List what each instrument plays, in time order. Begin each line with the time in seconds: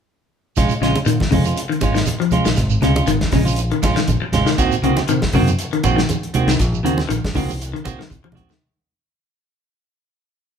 0.56 fingered electric bass A#1, clean electric guitar G#3 C#4 F4, kick, snare, closed hi-hat, high conga, low conga, shekere
0.69 closed hi-hat, shekere
0.81 fingered electric bass A#1, clean electric guitar C#3 G#3 C#4 F4, snare, closed hi-hat
0.95 closed hi-hat, high conga, shekere
1.06 fingered electric bass A#2, clean electric guitar D#3, closed hi-hat, high conga, shekere
1.20 kick, snare, high conga
1.31 fingered electric bass F2, clean electric guitar C#3 G#3 C#4 F4, kick, open hi-hat, low conga, shekere
1.45 clean electric guitar C#4 F4, closed hi-hat, shekere
1.56 closed hi-hat, high conga, shekere
1.69 clean electric guitar D#3, closed hi-hat
1.81 fingered electric bass G#1, clean electric guitar G#3 C#4 F4, kick, closed hi-hat, high conga, shekere
1.94 clean electric guitar D#3, snare, closed hi-hat, shekere
2.05 closed hi-hat, high conga, shekere
2.20 clean electric guitar F3, closed hi-hat
2.31 clean electric guitar G#3 C#4 F4, closed hi-hat, high conga, low conga, shekere
2.45 fingered electric bass A#1, clean electric guitar D#3, snare, closed hi-hat, shekere
2.56 fingered electric bass G#1, kick, snare, closed hi-hat, high conga, low conga, shekere
2.70 shekere
2.81 fingered electric bass C#2, clean electric guitar C#3 G#3 C#4 F4, snare, closed hi-hat, low conga
2.95 clean electric guitar C#4 F4, closed hi-hat, high conga, shekere
3.07 fingered electric bass G#1, clean electric guitar D#3, closed hi-hat, high conga, shekere
3.21 kick, snare, closed hi-hat, high conga
3.32 fingered electric bass A#1, clean electric guitar C#3 G#3 C#4, muted clean electric guitar stroke, kick, snare, open hi-hat, low conga, shekere
3.45 clean electric guitar C#4 F4, high conga, shekere
3.56 closed hi-hat, high conga, shekere
3.71 clean electric guitar D#3, closed hi-hat
3.82 fingered electric bass A#1, clean electric guitar G#3 C#4 F4, kick, snare, closed hi-hat, high conga, shekere
3.96 clean electric guitar D#3, snare, closed hi-hat, shekere
4.08 fingered electric bass A#1, kick, closed hi-hat, high conga, shekere
4.21 muted fingered electric bass stroke, muted clean electric guitar stroke
4.32 fingered electric bass G#1, clean electric guitar G#3 C#4 F4, snare, closed hi-hat, high conga, low conga, shekere
4.46 clean electric guitar D#3, snare, shekere
4.58 fingered electric bass C2, clean electric guitar D#3 A#3 C4 F#4, kick, snare, closed hi-hat, high conga, shekere
4.71 closed hi-hat, shekere
4.82 fingered electric bass C2, clean electric guitar C#3 D#3 A#3 C4 F#4, closed hi-hat
4.96 snare, closed hi-hat, high conga, shekere
5.08 fingered electric bass C3, clean electric guitar D#3, closed hi-hat, high conga, shekere
5.22 kick, snare, high conga
5.33 fingered electric bass F#2, clean electric guitar C#3 D#3 A#3 C4 F#4, kick, open hi-hat, low conga, shekere
5.48 closed hi-hat, high conga, shekere
5.59 closed hi-hat, high conga, shekere
5.73 clean electric guitar D#3, closed hi-hat
5.83 fingered electric bass A#1, clean electric guitar D#3 A#3 C4 F#4, kick, closed hi-hat, high conga, shekere
5.96 clean electric guitar D#3, snare, closed hi-hat, shekere
6.09 closed hi-hat, high conga, shekere
6.23 closed hi-hat
6.34 clean electric guitar D#3 A#3 C4 F#4, closed hi-hat, low conga, shekere
6.47 fingered electric bass C2, clean electric guitar D#3, snare, closed hi-hat, shekere
6.59 fingered electric bass A#1, kick, snare, closed hi-hat, high conga, shekere
6.74 shekere
6.83 fingered electric bass D#2, clean electric guitar C#3 D#3 A#3 C4 F#4, closed hi-hat
6.98 snare, closed hi-hat, high conga, shekere
7.09 fingered electric bass A#1, clean electric guitar D#3, closed hi-hat, shekere
7.25 kick, snare, closed hi-hat, high conga
7.35 fingered electric bass C2, clean electric guitar C#3 D#3 A#3 C4 F#4, kick, snare, open hi-hat, low conga, shekere
7.49 high conga, shekere
7.61 closed hi-hat, high conga, shekere
7.73 clean electric guitar D#3, closed hi-hat
7.84 fingered electric bass C2, clean electric guitar D#3 A#3 C4 F#4, kick, closed hi-hat, high conga, shekere
7.99 clean electric guitar D#3, snare, closed hi-hat, shekere
8.10 fingered electric bass C2, kick, closed hi-hat, high conga, shekere
8.24 clean electric guitar F3, high conga
8.32 clean electric guitar D#3 C4 F#4, low conga
8.36 fingered electric bass A#1, closed hi-hat, low conga, shekere
8.49 clean electric guitar D#3, snare, low conga, shekere